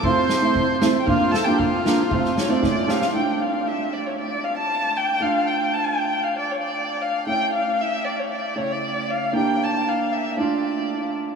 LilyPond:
<<
  \new Staff \with { instrumentName = "Violin" } { \time 2/4 \key f \major \tempo 4 = 116 c'''4. r16. g''32 | f''8 a''16 g''16 f''4~ | f''8 des''16 d''8. f''8 | \key d \minor g''16. g''32 f''8 e''8 d''16 cis''16 |
d''8 f''16 a''8. g''8 | f''8 g''8 a''16 g''8. | f''16 d''16 cis''16 d''8. f''8 | g''8 f''8 e''8 d''16 cis''16 |
d''8 cis''16 d''8. f''8 | g''8 a''8 f''8 e''8 | d''4. r8 | }
  \new Staff \with { instrumentName = "Accordion" } { \time 2/4 \key f \major c''4. r8 | f'8 a'16 g'16 f'4~ | f'4 r4 | \key d \minor r2 |
r2 | r2 | r2 | r2 |
r2 | r2 | r2 | }
  \new Staff \with { instrumentName = "Upright piano" } { \time 2/4 \key f \major <a c' f'>8 r16 <a c' e'>16 r8 <a c' e'>16 r16 | <bes d' f'>8 r16 <bes d' f'>16 r8 <bes d' f'>16 r16 | <a c' f'>8 r16 <a c' e'>16 <a cis' e'>8 <a cis' g'>16 r16 | \key d \minor <a d' f'>2~ |
<a d' f'>2 | <a d' f'>2~ | <a d' f'>2 | <a cis' e'>2~ |
<a cis' e'>8 <cis a e'>4. | <bes d' g'>2 | <a d' f'>2 | }
  \new DrumStaff \with { instrumentName = "Drums" } \drummode { \time 2/4 bd8 sn8 bd8 sn8 | bd8 sn8 bd8 sn8 | bd16 sn16 sn8 <bd sn>8 sn16 sn16 | r4 r4 |
r4 r4 | r4 r4 | r4 r4 | r4 r4 |
r4 r4 | r4 r4 | r4 r4 | }
>>